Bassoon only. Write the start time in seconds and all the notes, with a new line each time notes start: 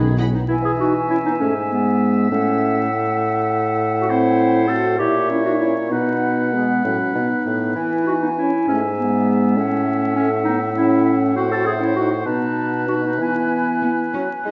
Already playing: D#3
0.49 E3
1.41 G#2
2.31 A2
4.99 A#2
5.91 B2
6.84 A2
7.15 B2
7.46 A2
7.76 E3
8.68 G#2
9.57 A2
12.26 B2
13.19 E3
14.14 F#3
14.45 G#3